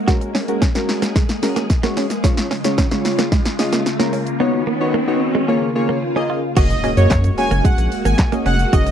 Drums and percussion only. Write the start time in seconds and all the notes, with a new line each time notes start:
0.08 kick, snare, shaker
0.21 closed hi-hat, shaker
0.35 snare, open hi-hat, shaker
0.48 closed hi-hat, shaker
0.62 kick, snare, shaker
0.75 snare, closed hi-hat, shaker
0.89 snare, open hi-hat, shaker
1.02 snare, closed hi-hat, shaker
1.16 kick, snare, shaker
1.29 snare, closed hi-hat, shaker
1.43 snare, open hi-hat, shaker
1.56 snare, closed hi-hat, shaker
1.70 kick, snare, shaker
1.83 snare, closed hi-hat, shaker
1.97 snare, open hi-hat, shaker
2.10 snare, closed hi-hat, shaker
2.24 kick, snare, shaker
2.37 snare, closed hi-hat, shaker
2.51 snare, open hi-hat, shaker
2.64 snare, closed hi-hat, shaker
2.78 kick, snare, shaker
2.91 snare, closed hi-hat, shaker
3.05 snare, open hi-hat, shaker
3.19 snare, closed hi-hat, shaker
3.32 kick, snare, shaker
3.45 snare, closed hi-hat, shaker
3.59 snare, open hi-hat, shaker
3.73 snare, closed hi-hat, shaker
3.86 snare, shaker
4.00 snare, closed hi-hat, shaker
4.13 open hi-hat, shaker
4.27 closed hi-hat, shaker
6.57 kick, closed hi-hat, crash, shaker
6.70 closed hi-hat, shaker
6.84 open hi-hat, shaker
6.97 closed hi-hat, shaker
7.10 kick, snare, clap, closed hi-hat, shaker
7.24 closed hi-hat, shaker
7.38 open hi-hat, shaker
7.51 closed hi-hat, shaker
7.65 kick, closed hi-hat, shaker
7.78 closed hi-hat, shaker
7.92 open hi-hat, shaker
8.05 closed hi-hat, shaker
8.18 kick, snare, clap, closed hi-hat, shaker
8.32 closed hi-hat, shaker
8.46 open hi-hat, shaker
8.59 closed hi-hat, shaker
8.73 kick, closed hi-hat, shaker
8.87 closed hi-hat, shaker